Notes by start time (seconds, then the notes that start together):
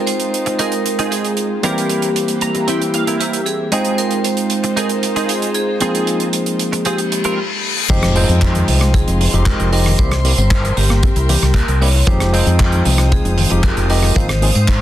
Already playing: G#3 C4 D#4 F4 C5 G5
0.07 C5, closed hi-hat
0.20 closed hi-hat
0.34 closed hi-hat
0.46 muted clean electric guitar stroke, closed hi-hat
0.59 D#4 F4 G#4 A#4, closed hi-hat
0.72 closed hi-hat
0.85 muted clean electric guitar stroke, closed hi-hat
0.99 D#4 F4 G#4, closed hi-hat
1.11 G#4, closed hi-hat
1.25 closed hi-hat
1.37 closed hi-hat
1.63 E3 G3 A#3 C4 E4 G4 A#4, closed hi-hat
1.78 closed hi-hat
1.90 closed hi-hat
2.02 closed hi-hat
2.16 closed hi-hat
2.28 closed hi-hat
2.41 A#5, closed hi-hat
2.55 muted clean electric guitar stroke, closed hi-hat
2.67 C4 E4 G4 G5, closed hi-hat
2.82 closed hi-hat
2.94 F5, muted clean electric guitar stroke, closed hi-hat
3.07 C4 E4 A#4, closed hi-hat
3.20 G4 E5, closed hi-hat
3.33 closed hi-hat
3.46 G#4, closed hi-hat
3.71 G#3 C4 D#4 F4 G#4 C5 G5, closed hi-hat
3.85 closed hi-hat
3.98 A#4, closed hi-hat
4.11 closed hi-hat
4.24 C5, closed hi-hat
4.37 closed hi-hat
4.50 closed hi-hat
4.64 muted clean electric guitar stroke, closed hi-hat
4.76 D#4 F4 G#4 A#4, closed hi-hat
4.89 closed hi-hat
5.03 muted clean electric guitar stroke, closed hi-hat
5.16 D#4 F4 G#4, closed hi-hat
5.29 G#4, closed hi-hat
5.42 closed hi-hat
5.54 G#4, closed hi-hat
5.80 F3 G#3 A#3 C4 D#4 F4 G#4, closed hi-hat
5.95 closed hi-hat
6.07 closed hi-hat
6.20 closed hi-hat
6.33 closed hi-hat
6.46 closed hi-hat
6.59 closed hi-hat
6.73 muted clean electric guitar stroke, closed hi-hat
6.85 C4 F4 G4 G#4, closed hi-hat, reverse cymbal
6.98 closed hi-hat
7.12 muted clean electric guitar stroke, closed hi-hat
7.24 C4 F4 A#4, closed hi-hat
7.90 F1 D#3 F3 G#3 C4 D#4 G4 C5 D#5 F5 C6, kick, closed hi-hat, crash, sub drop
8.03 F3, cross-stick, closed hi-hat
8.15 F3 G#3 C4 D#4 C5 G5, open hi-hat
8.29 F2 C4, closed hi-hat
8.41 D#4, kick, clap, closed hi-hat
8.55 D#3, closed hi-hat
8.68 C2 F3, open hi-hat
8.81 G#3, cross-stick, closed hi-hat
8.94 C4 G#4, kick, closed hi-hat
9.07 F1 D#4, closed hi-hat
9.20 D#3, open hi-hat
9.33 F1 F3 G#3 C4 D#4 G4, closed hi-hat
9.46 G#3 A#4, kick, clap, closed hi-hat
9.59 F1 C4, closed hi-hat
9.72 F3 G#3 C4 D#4 G4 A#4, open hi-hat
9.86 D#3, cross-stick
9.98 C2 E3 G3 A#3 C4 E4 G4 A#4 C5 E5 G5, kick, closed hi-hat
10.11 G3, cross-stick, closed hi-hat
10.24 G3 A#3 C4 E4 G4, open hi-hat
10.38 G1 C4 C5, closed hi-hat
10.51 E4, kick, clap, closed hi-hat
10.64 E3, closed hi-hat
10.77 G1 G3 G4, open hi-hat
10.90 A#3, cross-stick, closed hi-hat
11.03 C4, kick, closed hi-hat
11.16 C2 E4, closed hi-hat
11.28 E3 G3 A#3 C4 E4 G4, open hi-hat
11.42 C2 G3, cross-stick, closed hi-hat
11.54 A#3 A#4, kick, clap, closed hi-hat
11.68 C2 C4, closed hi-hat
11.81 G3 A#3 C4 E4 G4 C#5, open hi-hat
11.94 E3
12.07 F1 D#3 F3 G#3 C4 D#4 G4 C5 F5 D#6, kick, closed hi-hat
12.20 F3, cross-stick, closed hi-hat
12.32 F3 G#3 C4 D#4 C5 G5, open hi-hat
12.46 F2 C4, closed hi-hat
12.59 D#4, kick, clap, closed hi-hat
12.72 D#3, closed hi-hat
12.85 C2 F3, open hi-hat
12.98 G#3, cross-stick, closed hi-hat
13.12 C4 G#4, kick, closed hi-hat
13.25 F1 D#4, closed hi-hat
13.38 D#3, open hi-hat
13.50 F1 F3 G#3 C4 D#4 G4, closed hi-hat
13.63 G#3 A#4, kick, clap, closed hi-hat
13.77 F1 C4, closed hi-hat
13.89 F3 G#3 C4 D#4 G4 A#4, open hi-hat
14.03 D#3, cross-stick
14.15 G#1 D#3 F3 A#3 C4 D#4 F4 C5, kick, closed hi-hat
14.29 F3, cross-stick, closed hi-hat
14.42 F3 G#3 A#3 C4 D#4 G#4, open hi-hat
14.55 G#2 C4 C5, closed hi-hat
14.68 D#4, kick, clap, closed hi-hat